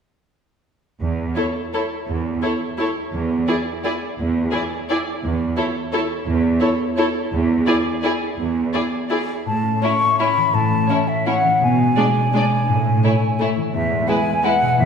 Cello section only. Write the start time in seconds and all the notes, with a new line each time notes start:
1.01 E2
2.08 E2
3.13 E2
4.19 E2
5.23 E2
6.26 E2
7.32 E2
8.39 E2
9.47 A2
10.54 A2
11.61 B2
12.68 A2
13.74 E2
14.78 E2